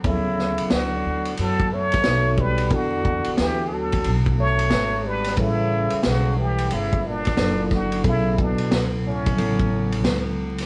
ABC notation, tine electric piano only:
X:1
M:4/4
L:1/8
Q:"Swing 16ths" 1/4=90
K:D
V:1 name="Tine electric piano"
[=F,^F,B,EAc]6 [B,^DFA=c]2 | [B,DEFA]8 | [G,EABc]6 [F,^A,DE=A]2 | [B,,F,B,EA]4 [C,F,B,EA]4 |]